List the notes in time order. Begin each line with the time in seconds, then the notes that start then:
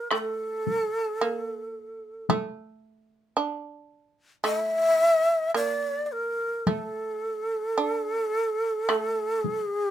Already playing: D4
0.11 A3 A#4, taiko rim
0.18 A4
0.67 taiko high
1.21 A#3
2.29 A3, taiko high
3.37 D4
4.44 A3 E5, taiko rim
5.54 A#3 D5
6.06 D5
6.12 A#4
6.67 A3 A4, taiko high
7.78 D4
8.89 A3, taiko rim
9.40 G#4
9.44 taiko high
9.75 G4